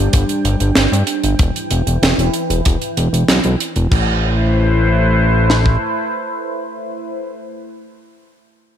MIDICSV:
0, 0, Header, 1, 4, 480
1, 0, Start_track
1, 0, Key_signature, 0, "minor"
1, 0, Tempo, 631579
1, 1060, Time_signature, 4, 2, 24, 8
1, 6670, End_track
2, 0, Start_track
2, 0, Title_t, "Analog synth pad"
2, 0, Program_c, 0, 89
2, 0, Note_on_c, 0, 55, 80
2, 0, Note_on_c, 0, 62, 75
2, 0, Note_on_c, 0, 72, 85
2, 0, Note_on_c, 0, 79, 87
2, 1030, Note_off_c, 0, 72, 0
2, 1039, Note_off_c, 0, 55, 0
2, 1040, Note_off_c, 0, 62, 0
2, 1059, Note_on_c, 0, 71, 68
2, 1060, Note_on_c, 0, 52, 77
2, 1060, Note_on_c, 0, 64, 70
2, 2948, Note_off_c, 0, 79, 0
2, 2961, Note_off_c, 0, 52, 0
2, 2961, Note_off_c, 0, 64, 0
2, 2961, Note_off_c, 0, 71, 0
2, 2979, Note_on_c, 0, 57, 77
2, 2980, Note_on_c, 0, 64, 72
2, 2980, Note_on_c, 0, 71, 67
2, 2980, Note_on_c, 0, 72, 86
2, 5477, Note_off_c, 0, 57, 0
2, 5477, Note_off_c, 0, 72, 0
2, 5478, Note_off_c, 0, 64, 0
2, 5478, Note_off_c, 0, 71, 0
2, 6670, End_track
3, 0, Start_track
3, 0, Title_t, "Analog synth bass"
3, 0, Program_c, 1, 38
3, 102, Note_on_c, 1, 31, 102
3, 185, Note_off_c, 1, 31, 0
3, 339, Note_on_c, 1, 31, 93
3, 424, Note_off_c, 1, 31, 0
3, 460, Note_on_c, 1, 31, 83
3, 545, Note_off_c, 1, 31, 0
3, 580, Note_on_c, 1, 31, 102
3, 664, Note_off_c, 1, 31, 0
3, 700, Note_on_c, 1, 43, 78
3, 785, Note_off_c, 1, 43, 0
3, 940, Note_on_c, 1, 31, 80
3, 1025, Note_off_c, 1, 31, 0
3, 1059, Note_on_c, 1, 28, 99
3, 1144, Note_off_c, 1, 28, 0
3, 1300, Note_on_c, 1, 28, 94
3, 1385, Note_off_c, 1, 28, 0
3, 1420, Note_on_c, 1, 28, 83
3, 1505, Note_off_c, 1, 28, 0
3, 1539, Note_on_c, 1, 28, 105
3, 1624, Note_off_c, 1, 28, 0
3, 1659, Note_on_c, 1, 28, 76
3, 1744, Note_off_c, 1, 28, 0
3, 1899, Note_on_c, 1, 28, 81
3, 1984, Note_off_c, 1, 28, 0
3, 2021, Note_on_c, 1, 28, 100
3, 2105, Note_off_c, 1, 28, 0
3, 2260, Note_on_c, 1, 28, 92
3, 2345, Note_off_c, 1, 28, 0
3, 2378, Note_on_c, 1, 28, 79
3, 2464, Note_off_c, 1, 28, 0
3, 2499, Note_on_c, 1, 35, 102
3, 2584, Note_off_c, 1, 35, 0
3, 2620, Note_on_c, 1, 35, 76
3, 2704, Note_off_c, 1, 35, 0
3, 2859, Note_on_c, 1, 28, 80
3, 2944, Note_off_c, 1, 28, 0
3, 2976, Note_on_c, 1, 33, 92
3, 4388, Note_off_c, 1, 33, 0
3, 6670, End_track
4, 0, Start_track
4, 0, Title_t, "Drums"
4, 99, Note_on_c, 9, 42, 107
4, 103, Note_on_c, 9, 36, 115
4, 175, Note_off_c, 9, 42, 0
4, 179, Note_off_c, 9, 36, 0
4, 221, Note_on_c, 9, 42, 52
4, 297, Note_off_c, 9, 42, 0
4, 341, Note_on_c, 9, 42, 71
4, 417, Note_off_c, 9, 42, 0
4, 458, Note_on_c, 9, 42, 53
4, 534, Note_off_c, 9, 42, 0
4, 573, Note_on_c, 9, 38, 114
4, 580, Note_on_c, 9, 42, 98
4, 649, Note_off_c, 9, 38, 0
4, 656, Note_off_c, 9, 42, 0
4, 709, Note_on_c, 9, 42, 54
4, 785, Note_off_c, 9, 42, 0
4, 812, Note_on_c, 9, 42, 75
4, 888, Note_off_c, 9, 42, 0
4, 939, Note_on_c, 9, 42, 57
4, 1015, Note_off_c, 9, 42, 0
4, 1056, Note_on_c, 9, 42, 83
4, 1059, Note_on_c, 9, 36, 120
4, 1132, Note_off_c, 9, 42, 0
4, 1135, Note_off_c, 9, 36, 0
4, 1185, Note_on_c, 9, 42, 53
4, 1261, Note_off_c, 9, 42, 0
4, 1296, Note_on_c, 9, 42, 71
4, 1372, Note_off_c, 9, 42, 0
4, 1422, Note_on_c, 9, 42, 49
4, 1498, Note_off_c, 9, 42, 0
4, 1542, Note_on_c, 9, 42, 96
4, 1546, Note_on_c, 9, 38, 112
4, 1618, Note_off_c, 9, 42, 0
4, 1622, Note_off_c, 9, 38, 0
4, 1664, Note_on_c, 9, 42, 52
4, 1740, Note_off_c, 9, 42, 0
4, 1775, Note_on_c, 9, 42, 52
4, 1851, Note_off_c, 9, 42, 0
4, 1902, Note_on_c, 9, 42, 58
4, 1978, Note_off_c, 9, 42, 0
4, 2017, Note_on_c, 9, 42, 94
4, 2021, Note_on_c, 9, 36, 108
4, 2093, Note_off_c, 9, 42, 0
4, 2097, Note_off_c, 9, 36, 0
4, 2140, Note_on_c, 9, 42, 52
4, 2216, Note_off_c, 9, 42, 0
4, 2259, Note_on_c, 9, 42, 73
4, 2335, Note_off_c, 9, 42, 0
4, 2385, Note_on_c, 9, 42, 49
4, 2461, Note_off_c, 9, 42, 0
4, 2496, Note_on_c, 9, 38, 114
4, 2500, Note_on_c, 9, 42, 88
4, 2572, Note_off_c, 9, 38, 0
4, 2576, Note_off_c, 9, 42, 0
4, 2611, Note_on_c, 9, 42, 55
4, 2687, Note_off_c, 9, 42, 0
4, 2739, Note_on_c, 9, 42, 80
4, 2815, Note_off_c, 9, 42, 0
4, 2856, Note_on_c, 9, 42, 50
4, 2932, Note_off_c, 9, 42, 0
4, 2976, Note_on_c, 9, 36, 112
4, 2982, Note_on_c, 9, 49, 77
4, 3052, Note_off_c, 9, 36, 0
4, 3058, Note_off_c, 9, 49, 0
4, 4179, Note_on_c, 9, 38, 58
4, 4255, Note_off_c, 9, 38, 0
4, 4299, Note_on_c, 9, 36, 72
4, 4375, Note_off_c, 9, 36, 0
4, 6670, End_track
0, 0, End_of_file